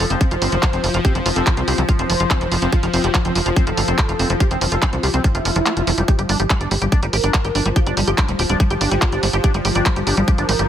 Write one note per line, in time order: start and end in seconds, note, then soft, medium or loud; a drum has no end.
0.00 6.07 F3 medium
0.10 0.17 F1 medium
0.10 0.16 C4 medium
0.10 0.19 C4 medium
0.10 closed hi-hat soft
0.21 0.24 F3 medium
0.21 0.27 C4 medium
0.21 kick loud
0.21 closed hi-hat medium
0.31 0.38 F1 medium
0.31 0.35 F4 medium
0.31 0.96 C5 loud
0.31 closed hi-hat soft
0.42 0.48 G1 medium
0.42 0.51 C4 medium
0.42 open hi-hat loud
0.52 0.59 F1 medium
0.52 0.56 F3 medium
0.52 closed hi-hat soft
0.63 0.66 F4 medium
0.63 kick loud
0.63 clap loud
0.63 closed hi-hat medium
0.73 0.79 F1 medium
0.73 0.82 C4 medium
0.73 closed hi-hat soft
0.84 0.90 F1 loud
0.84 0.87 F3 medium
0.84 open hi-hat medium
0.94 1.00 F1 medium
0.94 0.98 F4 medium
0.94 closed hi-hat soft
1.05 1.14 C4 medium
1.05 1.10 G4 loud
1.05 kick loud
1.05 closed hi-hat medium
1.15 1.21 F1 medium
1.15 1.19 F3 medium
1.15 1.21 C4 medium
1.15 closed hi-hat medium
1.26 1.32 F1 loud
1.26 1.31 C4 medium
1.26 1.29 F4 medium
1.26 open hi-hat loud
1.36 1.42 F1 medium
1.36 1.45 C4 medium
1.36 1.42 A4 medium
1.36 closed hi-hat medium
1.47 1.52 C4 medium
1.47 kick loud
1.47 clap loud
1.47 closed hi-hat medium
1.57 1.63 C2 medium
1.57 1.63 C4 medium
1.57 1.61 F4 medium
1.57 closed hi-hat medium
1.68 1.74 C2 loud
1.68 1.76 C4 medium
1.68 1.73 G4 medium
1.68 open hi-hat medium
1.78 1.84 C2 medium
1.78 1.82 F3 medium
1.78 1.84 C4 medium
1.78 closed hi-hat soft
1.89 1.94 C4 medium
1.89 1.92 F4 medium
1.89 kick loud
1.89 closed hi-hat medium
1.99 2.05 F1 medium
1.99 2.08 C4 medium
1.99 2.64 C5 loud
1.99 closed hi-hat medium
2.10 2.16 F1 medium
2.10 2.13 F3 medium
2.10 open hi-hat loud
2.20 2.26 F1 medium
2.20 2.24 F4 medium
2.20 closed hi-hat medium
2.31 2.39 C4 medium
2.31 kick loud
2.31 clap loud
2.31 closed hi-hat medium
2.41 2.47 F1 medium
2.41 2.45 F3 medium
2.41 closed hi-hat medium
2.52 2.58 F1 loud
2.52 2.55 F4 medium
2.52 open hi-hat medium
2.62 2.68 F1 medium
2.62 2.71 C4 medium
2.62 closed hi-hat soft
2.72 2.76 F3 medium
2.72 2.78 F4 loud
2.72 kick loud
2.72 closed hi-hat medium
2.83 2.89 F1 medium
2.83 2.89 F3 medium
2.83 2.87 F4 medium
2.83 closed hi-hat medium
2.93 3.00 F1 loud
2.93 2.99 F3 medium
2.93 3.02 C4 medium
2.93 open hi-hat medium
3.04 3.10 F1 medium
3.04 3.08 F3 medium
3.04 3.10 G4 medium
3.04 closed hi-hat medium
3.14 3.20 F3 medium
3.14 3.18 F4 medium
3.14 kick loud
3.14 clap loud
3.14 closed hi-hat medium
3.25 3.31 F1 medium
3.25 3.31 F3 medium
3.25 3.34 C4 medium
3.25 closed hi-hat medium
3.35 3.42 F1 loud
3.35 3.39 F3 medium
3.35 3.41 F4 medium
3.35 open hi-hat medium
3.46 3.52 F1 medium
3.46 3.52 F3 medium
3.46 3.49 F4 medium
3.46 closed hi-hat medium
3.56 3.62 F3 medium
3.56 3.65 C4 medium
3.56 kick loud
3.56 closed hi-hat medium
3.67 3.73 F1 medium
3.67 3.70 F3 medium
3.67 4.32 A4 loud
3.67 closed hi-hat medium
3.77 3.84 G1 loud
3.77 3.81 F4 medium
3.77 open hi-hat loud
3.88 3.94 F1 medium
3.88 3.97 C4 medium
3.88 closed hi-hat medium
3.98 4.02 F3 medium
3.98 kick loud
3.98 clap loud
3.98 closed hi-hat medium
4.09 4.15 F1 medium
4.09 4.12 F4 medium
4.09 closed hi-hat medium
4.19 4.26 F1 loud
4.19 4.28 C4 medium
4.19 open hi-hat medium
4.30 4.36 F1 medium
4.30 4.33 F3 medium
4.30 closed hi-hat medium
4.40 4.44 F4 medium
4.40 4.46 G4 loud
4.40 kick loud
4.40 closed hi-hat medium
4.51 4.57 F1 medium
4.51 4.57 C4 medium
4.51 4.60 C4 medium
4.51 closed hi-hat medium
4.61 4.68 F1 loud
4.61 4.65 F3 medium
4.61 4.67 C4 medium
4.61 open hi-hat loud
4.72 4.78 F1 medium
4.72 4.75 F4 medium
4.72 4.78 A4 medium
4.72 closed hi-hat medium
4.82 4.91 C4 medium
4.82 4.88 C4 medium
4.82 kick loud
4.82 clap loud
4.82 closed hi-hat medium
4.93 4.99 C2 medium
4.93 4.96 F3 medium
4.93 4.99 C4 medium
4.93 closed hi-hat medium
5.03 5.10 C2 loud
5.03 5.07 F4 medium
5.03 5.09 G4 medium
5.03 open hi-hat medium
5.14 5.20 C2 medium
5.14 5.23 C4 medium
5.14 5.20 C4 medium
5.14 closed hi-hat medium
5.24 5.28 F3 medium
5.24 5.30 C4 medium
5.24 kick loud
5.24 closed hi-hat medium
5.35 5.41 F1 medium
5.35 6.00 E4 loud
5.35 5.38 F4 medium
5.35 closed hi-hat medium
5.45 5.51 F1 loud
5.45 5.51 F3 medium
5.45 open hi-hat loud
5.56 5.62 F1 medium
5.56 5.59 F3 medium
5.56 closed hi-hat medium
5.66 5.72 A3 medium
5.66 clap loud
5.66 closed hi-hat medium
5.77 5.83 F1 medium
5.77 5.83 F3 medium
5.77 closed hi-hat medium
5.87 5.93 F1 loud
5.87 5.91 F3 loud
5.87 open hi-hat medium
5.98 6.04 F1 loud
5.98 6.04 G3 medium
5.98 closed hi-hat medium
6.08 10.68 F3 medium
6.08 6.12 G3 medium
6.08 6.14 G4 loud
6.08 kick loud
6.08 closed hi-hat medium
6.19 6.25 G1 medium
6.19 6.25 G3 medium
6.19 6.22 G4 medium
6.19 closed hi-hat medium
6.29 6.35 G1 loud
6.29 6.35 G3 medium
6.29 6.38 D4 medium
6.29 open hi-hat loud
6.40 6.46 G1 loud
6.40 6.43 G3 medium
6.40 6.45 G4 medium
6.40 closed hi-hat medium
6.50 6.56 G3 medium
6.50 6.54 G4 medium
6.50 kick loud
6.50 clap loud
6.50 closed hi-hat medium
6.61 6.67 G1 medium
6.61 6.66 G3 medium
6.61 6.69 D4 medium
6.61 closed hi-hat medium
6.71 6.77 G1 loud
6.71 6.75 G3 medium
6.71 6.77 G4 medium
6.71 open hi-hat medium
6.82 6.88 G1 medium
6.82 6.87 G3 medium
6.82 6.85 G4 medium
6.82 closed hi-hat medium
6.92 6.98 G3 medium
6.92 7.01 D4 medium
6.92 kick loud
6.92 closed hi-hat medium
7.03 7.09 G1 medium
7.03 7.06 G3 medium
7.03 7.68 A#4 loud
7.03 closed hi-hat medium
7.13 7.19 G#1 medium
7.13 7.17 G4 medium
7.13 open hi-hat loud
7.24 7.30 G1 medium
7.24 7.32 D4 medium
7.24 closed hi-hat medium
7.34 7.38 G3 medium
7.34 kick loud
7.34 clap loud
7.34 closed hi-hat medium
7.45 7.51 G1 medium
7.45 7.48 G4 medium
7.45 closed hi-hat medium
7.55 7.61 G1 loud
7.55 7.64 D4 medium
7.55 open hi-hat medium
7.66 7.72 G1 medium
7.66 7.69 G3 medium
7.66 closed hi-hat soft
7.76 7.82 F4 loud
7.76 7.80 G4 medium
7.76 kick loud
7.76 closed hi-hat medium
7.87 7.93 G1 medium
7.87 7.92 G3 medium
7.87 7.95 D4 medium
7.87 closed hi-hat medium
7.97 8.03 G1 loud
7.97 8.01 G3 medium
7.97 8.03 G3 medium
7.97 open hi-hat loud
8.07 8.14 G1 medium
8.07 8.11 G4 medium
8.07 8.13 G4 loud
8.07 closed hi-hat medium
8.18 8.24 G3 medium
8.18 8.27 D4 medium
8.18 kick loud
8.18 clap loud
8.18 closed hi-hat medium
8.28 8.35 D1 medium
8.28 8.34 G3 medium
8.28 8.32 G3 medium
8.28 closed hi-hat medium
8.39 8.45 D1 loud
8.39 8.45 F4 medium
8.39 8.42 G4 medium
8.39 open hi-hat medium
8.49 8.56 D1 medium
8.49 8.55 G3 medium
8.49 8.58 D4 medium
8.49 closed hi-hat medium
8.60 8.63 G3 medium
8.60 8.66 G3 medium
8.60 kick loud
8.60 closed hi-hat medium
8.70 8.77 G1 medium
8.70 8.74 G4 medium
8.70 9.35 G4 loud
8.70 closed hi-hat soft
8.81 8.87 G1 medium
8.81 8.90 D4 medium
8.81 open hi-hat loud
8.91 8.98 G1 medium
8.91 8.95 G3 medium
8.91 closed hi-hat medium
9.02 9.05 G4 medium
9.02 kick loud
9.02 clap loud
9.02 closed hi-hat medium
9.12 9.19 G1 medium
9.12 9.21 D4 medium
9.12 closed hi-hat medium
9.23 9.29 G1 loud
9.23 9.26 G3 medium
9.23 open hi-hat loud
9.33 9.40 G1 medium
9.33 9.37 G4 medium
9.33 closed hi-hat medium
9.44 9.53 D4 medium
9.44 9.50 G4 loud
9.44 kick loud
9.44 closed hi-hat medium
9.54 9.61 G1 medium
9.54 9.58 G3 medium
9.54 9.60 G3 medium
9.54 closed hi-hat soft
9.65 9.71 G1 loud
9.65 9.71 G3 medium
9.65 9.68 G4 medium
9.65 open hi-hat loud
9.75 9.82 G1 loud
9.75 9.84 D4 medium
9.75 9.81 G4 medium
9.75 closed hi-hat soft
9.86 9.89 G3 medium
9.86 9.92 G3 medium
9.86 kick loud
9.86 clap loud
9.86 closed hi-hat medium
9.96 10.03 G1 medium
9.96 10.02 G3 medium
9.96 10.00 G4 medium
9.96 closed hi-hat medium
10.07 10.13 G1 loud
10.07 10.16 D4 medium
10.07 10.13 G4 medium
10.07 open hi-hat loud
10.17 10.24 G1 medium
10.17 10.21 G3 medium
10.17 10.23 G3 medium
10.17 closed hi-hat medium
10.28 10.34 G3 medium
10.28 10.31 G4 medium
10.28 kick loud
10.28 closed hi-hat medium
10.38 10.45 G1 medium
10.38 10.47 D4 medium
10.38 10.68 A#4 loud
10.38 closed hi-hat soft
10.49 10.55 G#1 loud
10.49 10.52 G3 medium
10.49 open hi-hat loud
10.59 10.65 G1 medium
10.59 10.63 G4 medium
10.59 closed hi-hat soft